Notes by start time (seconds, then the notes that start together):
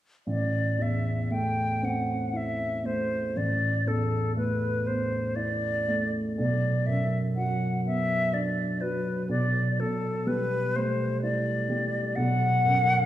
0.26 A1 D5
0.78 E2 E5
1.30 A3 G5
1.83 C4 F#5
2.33 E4 E5
2.84 A3 C5
3.36 A1 D5
3.86 E2 A4
4.37 A3 B4
4.87 B3 C5
5.36 E4 D5
5.88 A3
6.37 B1 D5
6.86 F#2 E5
7.36 F#3 F#5
7.85 B3 E5
8.33 D4 D5
8.81 F#3 B4
9.29 B1 D5
9.79 B2 A4
10.27 G3 B4
10.76 A3 C5
11.22 E4 D5
11.69 G3
12.16 B1 F#5
12.65 F#2